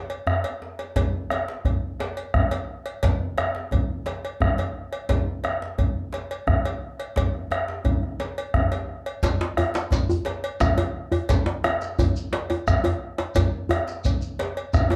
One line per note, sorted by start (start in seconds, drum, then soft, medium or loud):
0.10 cowbell soft
0.10 djembe slap soft
0.27 bombo rim medium
0.27 djembe tone medium
0.27 djembe bass medium
0.44 cowbell soft
0.44 djembe bass soft
0.62 bombo rim soft
0.62 djembe slap soft
0.79 cowbell soft
0.79 djembe slap soft
0.96 bombo rim soft
0.96 bombo low medium
0.96 cowbell medium
0.96 djembe slap medium
0.96 djembe bass medium
1.13 djembe slap soft
1.30 bombo rim medium
1.30 cowbell soft
1.30 djembe tone medium
1.48 djembe slap medium
1.65 bombo low medium
1.65 cowbell soft
1.65 djembe slap soft
1.65 djembe bass medium
2.00 bombo rim soft
2.00 cowbell soft
2.00 djembe slap medium
2.17 cowbell soft
2.34 bombo rim medium
2.34 bombo low medium
2.34 djembe bass medium
2.51 cowbell soft
2.51 djembe slap medium
2.86 bombo rim soft
2.86 cowbell soft
3.03 bombo rim soft
3.03 bombo low medium
3.03 cowbell medium
3.03 djembe slap medium
3.03 djembe bass medium
3.22 djembe slap soft
3.38 bombo rim medium
3.38 cowbell soft
3.38 djembe tone medium
3.55 djembe slap medium
3.71 bombo low medium
3.71 cowbell soft
3.71 djembe slap soft
3.71 djembe bass medium
4.06 bombo rim soft
4.06 cowbell soft
4.06 djembe slap medium
4.25 cowbell soft
4.40 bombo rim medium
4.40 bombo low medium
4.40 djembe tone medium
4.40 djembe bass medium
4.58 cowbell soft
4.58 djembe slap medium
4.93 bombo rim soft
4.93 cowbell soft
5.09 bombo rim soft
5.09 bombo low medium
5.09 cowbell medium
5.09 djembe slap medium
5.09 djembe bass medium
5.27 djembe slap soft
5.44 bombo rim medium
5.44 cowbell soft
5.44 djembe tone medium
5.62 djembe slap medium
5.78 bombo low medium
5.78 cowbell soft
5.78 djembe slap soft
5.78 djembe bass medium
6.13 bombo rim soft
6.13 cowbell soft
6.13 djembe slap medium
6.31 cowbell soft
6.47 bombo rim medium
6.47 bombo low medium
6.47 djembe tone medium
6.47 djembe bass medium
6.65 cowbell soft
6.65 djembe slap soft
6.99 bombo rim soft
6.99 cowbell soft
7.16 bombo rim soft
7.16 bombo low medium
7.16 cowbell medium
7.16 djembe slap medium
7.16 djembe bass medium
7.35 bombo rim soft
7.51 bombo rim medium
7.51 cowbell soft
7.51 djembe slap soft
7.51 djembe tone medium
7.68 djembe slap medium
7.84 bombo rim soft
7.84 bombo low loud
7.84 cowbell soft
7.84 djembe bass medium
8.03 bombo rim soft
8.03 djembe slap soft
8.20 cowbell soft
8.20 djembe slap medium
8.37 cowbell soft
8.37 djembe slap soft
8.54 bombo rim medium
8.54 bombo low medium
8.54 djembe tone medium
8.54 djembe bass medium
8.72 cowbell soft
8.72 djembe slap medium
8.89 bombo rim soft
9.06 bombo rim soft
9.06 cowbell soft
9.06 djembe slap soft
9.23 bombo rim soft
9.23 bombo low medium
9.23 cowbell medium
9.23 djembe slap medium
9.23 djembe bass medium
9.23 shekere medium
9.40 djembe slap soft
9.40 djembe slap medium
9.57 bombo rim medium
9.57 cowbell medium
9.57 djembe tone medium
9.57 djembe bass medium
9.74 djembe slap medium
9.74 shekere soft
9.91 bombo low medium
9.91 cowbell soft
9.91 djembe slap soft
9.91 djembe bass medium
9.91 shekere medium
9.93 djembe slap medium
10.09 djembe bass medium
10.09 shekere soft
10.25 bombo rim soft
10.25 cowbell medium
10.25 djembe slap medium
10.44 cowbell medium
10.60 bombo rim loud
10.60 bombo low loud
10.60 djembe slap medium
10.60 djembe tone medium
10.60 djembe bass medium
10.60 shekere medium
10.77 cowbell medium
10.77 djembe slap medium
10.77 djembe tone medium
11.12 bombo rim soft
11.12 cowbell soft
11.12 djembe bass medium
11.29 bombo rim soft
11.29 bombo low medium
11.29 cowbell medium
11.29 djembe slap medium
11.29 djembe bass medium
11.29 shekere medium
11.46 djembe slap medium
11.46 djembe slap soft
11.64 bombo rim loud
11.64 cowbell soft
11.64 djembe tone medium
11.82 djembe slap medium
11.82 shekere soft
11.99 bombo low loud
11.99 cowbell soft
11.99 djembe slap soft
11.99 djembe bass medium
11.99 shekere medium
12.16 shekere soft
12.33 bombo rim soft
12.33 cowbell medium
12.33 djembe slap medium
12.50 cowbell soft
12.50 djembe tone medium
12.67 bombo rim medium
12.67 bombo low medium
12.67 djembe tone medium
12.67 djembe bass medium
12.67 shekere medium
12.84 cowbell medium
12.84 djembe slap medium
12.84 djembe bass medium
13.18 bombo rim soft
13.18 cowbell soft
13.18 djembe slap medium
13.35 bombo rim soft
13.35 bombo low medium
13.35 cowbell medium
13.35 djembe slap medium
13.35 djembe tone medium
13.35 djembe bass medium
13.35 shekere medium
13.53 djembe slap soft
13.69 bombo rim medium
13.69 cowbell medium
13.69 djembe tone medium
13.69 djembe bass medium
13.88 djembe slap medium
13.88 shekere soft
14.04 bombo low medium
14.04 cowbell soft
14.04 djembe slap soft
14.04 djembe bass medium
14.04 shekere medium
14.22 shekere soft
14.39 bombo rim soft
14.39 cowbell soft
14.39 djembe slap medium
14.57 cowbell soft
14.73 bombo rim loud
14.73 bombo low loud
14.73 djembe tone medium
14.73 djembe bass medium
14.73 shekere medium
14.90 cowbell soft
14.90 djembe slap medium
14.90 djembe tone loud